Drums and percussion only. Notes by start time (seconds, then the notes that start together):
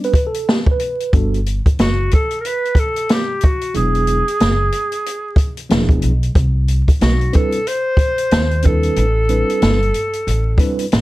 0.04 closed hi-hat
0.14 kick, closed hi-hat
0.34 closed hi-hat
0.49 snare
0.66 kick
0.79 closed hi-hat
1.00 closed hi-hat
1.13 kick, closed hi-hat
1.34 closed hi-hat
1.46 closed hi-hat
1.66 kick, closed hi-hat
1.79 snare, closed hi-hat
2.11 kick, closed hi-hat
2.31 closed hi-hat
2.45 closed hi-hat
2.65 closed hi-hat
2.75 kick, closed hi-hat
2.96 closed hi-hat
3.09 snare, closed hi-hat
3.41 kick, closed hi-hat
3.61 closed hi-hat
3.74 closed hi-hat
3.95 closed hi-hat
4.07 closed hi-hat
4.28 closed hi-hat
4.40 snare, closed hi-hat
4.72 closed hi-hat
4.92 closed hi-hat
5.06 closed hi-hat
5.36 kick, closed hi-hat
5.57 closed hi-hat
5.70 snare, closed hi-hat
5.89 kick, closed hi-hat
6.02 closed hi-hat
6.23 closed hi-hat
6.35 kick, closed hi-hat
6.68 closed hi-hat
6.88 kick, closed hi-hat
7.01 snare, closed hi-hat
7.21 closed hi-hat
7.33 kick, closed hi-hat
7.52 closed hi-hat
7.67 closed hi-hat
7.97 kick, closed hi-hat
8.18 closed hi-hat
8.31 snare, closed hi-hat
8.51 closed hi-hat
8.62 kick, closed hi-hat
8.83 closed hi-hat
8.96 closed hi-hat
9.29 closed hi-hat
9.50 closed hi-hat
9.62 snare, closed hi-hat
9.82 closed hi-hat
9.94 closed hi-hat
10.13 closed hi-hat
10.28 closed hi-hat
10.58 kick, closed hi-hat
10.79 closed hi-hat
10.92 snare, closed hi-hat